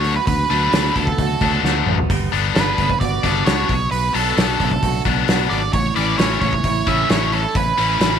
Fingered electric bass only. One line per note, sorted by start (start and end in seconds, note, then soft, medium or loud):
0.00 0.18 D2 medium
0.27 0.45 D2 medium
0.51 0.68 D2 medium
0.73 0.91 D2 medium
0.96 1.14 D2 medium
1.18 1.36 D2 medium
1.41 1.59 D2 medium
1.63 1.81 D2 medium
1.87 2.04 A1 medium
2.10 2.27 G1 medium
2.32 2.50 G1 medium
2.56 2.73 G1 medium
2.78 2.96 G1 medium
3.01 3.18 G1 medium
3.24 3.41 G1 medium
3.46 3.64 C#2 medium
3.69 3.87 B1 medium
3.91 4.09 B1 medium
4.14 4.32 B1 medium
4.37 4.55 B1 medium
4.61 4.78 B1 medium
4.83 5.00 B1 medium
5.05 5.23 B1 medium
5.29 5.46 B1 medium
5.51 5.68 G#1 medium
5.73 5.91 A1 medium
5.97 6.14 A1 medium
6.19 6.37 A1 medium
6.42 6.59 A1 medium
6.64 6.82 A1 medium
6.87 7.05 A1 medium
7.10 7.45 A1 medium
7.55 7.73 A1 medium
7.78 7.96 A1 medium
8.00 8.18 A1 medium